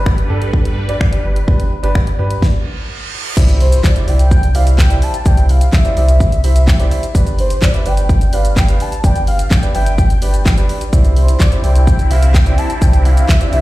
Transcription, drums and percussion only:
0.06 finger snap loud
0.06 kick loud
0.18 closed hi-hat soft
0.42 closed hi-hat medium
0.53 kick loud
0.65 closed hi-hat medium
0.89 closed hi-hat medium
1.01 finger snap loud
1.01 kick loud
1.13 closed hi-hat medium
1.36 closed hi-hat medium
1.48 kick loud
1.60 closed hi-hat soft
1.84 closed hi-hat medium
1.95 finger snap loud
1.95 kick loud
2.07 closed hi-hat medium
2.31 closed hi-hat medium
2.42 kick loud
2.42 snare medium
3.37 kick loud
3.37 crash loud
3.37 shaker medium
3.49 closed hi-hat medium
3.49 shaker soft
3.60 open hi-hat medium
3.60 shaker soft
3.72 closed hi-hat medium
3.72 shaker medium
3.84 kick loud
3.84 snare medium
3.84 clap loud
3.84 shaker medium
3.96 closed hi-hat medium
3.96 shaker medium
4.08 open hi-hat medium
4.08 shaker medium
4.19 closed hi-hat medium
4.19 shaker medium
4.31 kick loud
4.31 shaker medium
4.43 closed hi-hat medium
4.43 shaker medium
4.55 open hi-hat medium
4.55 shaker medium
4.67 closed hi-hat medium
4.67 shaker medium
4.78 kick loud
4.78 snare medium
4.78 clap loud
4.78 shaker medium
4.90 closed hi-hat medium
4.90 shaker medium
5.02 open hi-hat medium
5.02 shaker medium
5.14 closed hi-hat medium
5.14 shaker medium
5.26 kick loud
5.26 shaker loud
5.37 closed hi-hat medium
5.37 shaker soft
5.49 open hi-hat medium
5.49 shaker soft
5.61 closed hi-hat medium
5.61 shaker medium
5.72 kick loud
5.72 snare medium
5.72 clap loud
5.72 shaker medium
5.85 closed hi-hat medium
5.85 shaker medium
5.97 open hi-hat medium
5.97 shaker medium
6.09 closed hi-hat medium
6.09 shaker medium
6.20 kick loud
6.20 shaker medium
6.32 closed hi-hat medium
6.32 shaker medium
6.44 open hi-hat medium
6.44 shaker medium
6.56 closed hi-hat medium
6.56 shaker medium
6.67 kick loud
6.67 snare loud
6.67 clap loud
6.67 shaker medium
6.80 closed hi-hat medium
6.80 shaker medium
6.91 open hi-hat medium
6.91 shaker medium
7.03 closed hi-hat medium
7.03 shaker medium
7.15 kick loud
7.15 shaker medium
7.27 closed hi-hat medium
7.27 shaker soft
7.39 open hi-hat medium
7.39 shaker soft
7.50 closed hi-hat medium
7.50 shaker medium
7.62 kick loud
7.62 snare medium
7.62 clap loud
7.62 shaker medium
7.74 closed hi-hat medium
7.74 shaker medium
7.86 open hi-hat medium
7.86 shaker medium
7.97 closed hi-hat medium
7.97 shaker medium
8.09 kick loud
8.09 shaker medium
8.21 closed hi-hat medium
8.21 shaker medium
8.33 open hi-hat medium
8.33 shaker medium
8.45 closed hi-hat medium
8.45 shaker medium
8.56 kick loud
8.56 snare medium
8.56 clap loud
8.56 shaker medium
8.68 closed hi-hat medium
8.68 shaker medium
8.80 open hi-hat medium
8.80 shaker medium
8.92 closed hi-hat medium
8.92 shaker medium
9.04 kick loud
9.04 shaker medium
9.16 closed hi-hat soft
9.16 shaker soft
9.27 open hi-hat medium
9.27 shaker medium
9.39 closed hi-hat medium
9.39 shaker medium
9.50 kick loud
9.50 snare medium
9.50 clap loud
9.50 shaker medium
9.63 closed hi-hat medium
9.63 shaker medium
9.75 open hi-hat medium
9.75 shaker medium
9.86 closed hi-hat medium
9.86 shaker medium
9.98 kick loud
9.98 shaker medium
10.10 closed hi-hat medium
10.10 shaker medium
10.22 open hi-hat loud
10.22 shaker medium
10.34 closed hi-hat medium
10.34 shaker medium
10.45 kick loud
10.45 snare medium
10.45 clap loud
10.45 shaker medium
10.58 closed hi-hat medium
10.58 shaker medium
10.69 open hi-hat medium
10.69 shaker medium
10.81 closed hi-hat medium
10.81 shaker medium
10.93 kick loud
10.93 shaker medium
11.05 closed hi-hat soft
11.05 shaker soft
11.16 open hi-hat medium
11.16 shaker soft
11.28 closed hi-hat medium
11.28 shaker medium
11.40 kick loud
11.40 snare loud
11.40 clap loud
11.40 shaker medium
11.52 closed hi-hat medium
11.52 shaker medium
11.64 open hi-hat medium
11.64 shaker medium
11.76 closed hi-hat medium
11.76 shaker medium
11.87 kick loud
11.87 shaker medium
11.99 closed hi-hat medium
11.99 shaker medium
12.11 open hi-hat medium
12.11 shaker medium
12.23 closed hi-hat medium
12.23 shaker medium
12.34 kick loud
12.34 snare medium
12.34 clap loud
12.34 shaker medium
12.46 closed hi-hat medium
12.46 shaker medium
12.58 open hi-hat medium
12.58 shaker medium
12.70 closed hi-hat medium
12.70 shaker medium
12.82 kick loud
12.82 shaker loud
12.93 closed hi-hat soft
12.93 shaker medium
13.05 open hi-hat medium
13.05 shaker soft
13.17 closed hi-hat medium
13.17 shaker medium
13.28 kick loud
13.28 snare medium
13.28 clap loud
13.28 shaker medium
13.41 closed hi-hat medium
13.41 shaker medium
13.53 open hi-hat medium
13.53 shaker medium

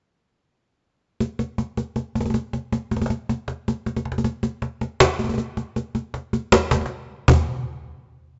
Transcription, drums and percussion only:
1.20 cajon slap soft
1.39 cajon slap soft
1.58 cajon slap soft
1.77 cajon slap soft
1.96 cajon slap soft
2.15 cajon slap soft
2.21 cajon slap soft
2.26 cajon slap soft
2.30 cajon slap soft
2.34 cajon slap soft
2.53 cajon slap soft
2.72 cajon slap soft
2.91 cajon slap soft
2.96 cajon slap soft
3.02 cajon slap soft
3.06 cajon slap soft
3.10 cajon slap soft
3.29 cajon slap soft
3.48 cajon slap soft
3.68 cajon slap soft
3.86 cajon slap soft
3.96 cajon slap soft
4.05 cajon slap soft
4.12 cajon slap soft
4.18 cajon slap soft
4.24 cajon slap soft
4.43 cajon slap soft
4.62 cajon slap soft
4.81 cajon slap soft
5.00 cajon slap loud
5.19 cajon slap soft
5.24 cajon slap soft
5.29 cajon slap soft
5.34 cajon slap soft
5.38 cajon slap soft
5.57 cajon slap soft
5.76 cajon slap soft
5.95 cajon slap soft
6.14 cajon slap soft
6.33 cajon slap soft
6.52 cajon slap loud
6.62 cajon slap soft
6.71 cajon slap medium
6.76 cajon slap soft
6.81 cajon slap soft
6.86 cajon slap soft
7.28 cajon bass loud
7.34 cajon slap soft
7.41 cajon slap soft

